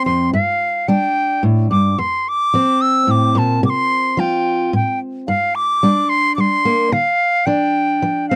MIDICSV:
0, 0, Header, 1, 3, 480
1, 0, Start_track
1, 0, Tempo, 549451
1, 280, Time_signature, 3, 2, 24, 8
1, 7299, End_track
2, 0, Start_track
2, 0, Title_t, "Flute"
2, 0, Program_c, 0, 73
2, 47, Note_on_c, 0, 84, 88
2, 267, Note_off_c, 0, 84, 0
2, 294, Note_on_c, 0, 77, 91
2, 768, Note_on_c, 0, 79, 102
2, 781, Note_off_c, 0, 77, 0
2, 1249, Note_off_c, 0, 79, 0
2, 1494, Note_on_c, 0, 86, 89
2, 1736, Note_on_c, 0, 84, 96
2, 1749, Note_off_c, 0, 86, 0
2, 1997, Note_on_c, 0, 86, 108
2, 2010, Note_off_c, 0, 84, 0
2, 2458, Note_on_c, 0, 88, 110
2, 2471, Note_off_c, 0, 86, 0
2, 2716, Note_on_c, 0, 86, 103
2, 2729, Note_off_c, 0, 88, 0
2, 2953, Note_on_c, 0, 81, 93
2, 2966, Note_off_c, 0, 86, 0
2, 3179, Note_off_c, 0, 81, 0
2, 3190, Note_on_c, 0, 86, 93
2, 3230, Note_on_c, 0, 84, 101
2, 3238, Note_off_c, 0, 86, 0
2, 3666, Note_on_c, 0, 79, 90
2, 3680, Note_off_c, 0, 84, 0
2, 4136, Note_off_c, 0, 79, 0
2, 4153, Note_on_c, 0, 79, 86
2, 4363, Note_off_c, 0, 79, 0
2, 4608, Note_on_c, 0, 77, 95
2, 4850, Note_on_c, 0, 86, 105
2, 4863, Note_off_c, 0, 77, 0
2, 5322, Note_on_c, 0, 84, 108
2, 5335, Note_off_c, 0, 86, 0
2, 5547, Note_off_c, 0, 84, 0
2, 5553, Note_on_c, 0, 86, 97
2, 5594, Note_on_c, 0, 84, 105
2, 5603, Note_off_c, 0, 86, 0
2, 6051, Note_on_c, 0, 77, 98
2, 6064, Note_off_c, 0, 84, 0
2, 6516, Note_on_c, 0, 79, 100
2, 6529, Note_off_c, 0, 77, 0
2, 7237, Note_off_c, 0, 79, 0
2, 7242, Note_on_c, 0, 77, 88
2, 7299, Note_off_c, 0, 77, 0
2, 7299, End_track
3, 0, Start_track
3, 0, Title_t, "Steel-string acoustic guitar"
3, 0, Program_c, 1, 25
3, 0, Note_on_c, 1, 60, 63
3, 53, Note_on_c, 1, 41, 66
3, 287, Note_off_c, 1, 41, 0
3, 288, Note_off_c, 1, 60, 0
3, 292, Note_on_c, 1, 43, 80
3, 719, Note_off_c, 1, 43, 0
3, 771, Note_on_c, 1, 55, 64
3, 777, Note_on_c, 1, 62, 63
3, 1199, Note_off_c, 1, 55, 0
3, 1248, Note_on_c, 1, 45, 70
3, 1486, Note_off_c, 1, 45, 0
3, 1491, Note_on_c, 1, 43, 67
3, 1702, Note_off_c, 1, 62, 0
3, 1728, Note_off_c, 1, 43, 0
3, 1734, Note_on_c, 1, 41, 81
3, 2161, Note_off_c, 1, 41, 0
3, 2216, Note_on_c, 1, 53, 73
3, 2225, Note_on_c, 1, 60, 66
3, 2642, Note_off_c, 1, 53, 0
3, 2684, Note_on_c, 1, 45, 64
3, 2925, Note_off_c, 1, 45, 0
3, 2925, Note_on_c, 1, 46, 71
3, 3165, Note_off_c, 1, 46, 0
3, 3171, Note_on_c, 1, 48, 86
3, 3600, Note_off_c, 1, 48, 0
3, 3644, Note_on_c, 1, 53, 68
3, 3656, Note_on_c, 1, 65, 68
3, 4077, Note_off_c, 1, 53, 0
3, 4131, Note_off_c, 1, 65, 0
3, 4134, Note_on_c, 1, 45, 74
3, 4562, Note_off_c, 1, 45, 0
3, 4612, Note_on_c, 1, 43, 77
3, 4615, Note_off_c, 1, 60, 0
3, 5040, Note_off_c, 1, 43, 0
3, 5092, Note_on_c, 1, 55, 69
3, 5099, Note_on_c, 1, 62, 66
3, 5520, Note_off_c, 1, 55, 0
3, 5573, Note_on_c, 1, 55, 61
3, 5811, Note_on_c, 1, 58, 61
3, 6000, Note_off_c, 1, 55, 0
3, 6018, Note_off_c, 1, 58, 0
3, 6022, Note_off_c, 1, 62, 0
3, 6048, Note_on_c, 1, 50, 82
3, 6477, Note_off_c, 1, 50, 0
3, 6522, Note_on_c, 1, 53, 68
3, 6528, Note_on_c, 1, 62, 61
3, 6953, Note_off_c, 1, 53, 0
3, 7009, Note_on_c, 1, 53, 65
3, 7262, Note_on_c, 1, 60, 62
3, 7299, Note_off_c, 1, 53, 0
3, 7299, Note_off_c, 1, 60, 0
3, 7299, Note_off_c, 1, 62, 0
3, 7299, End_track
0, 0, End_of_file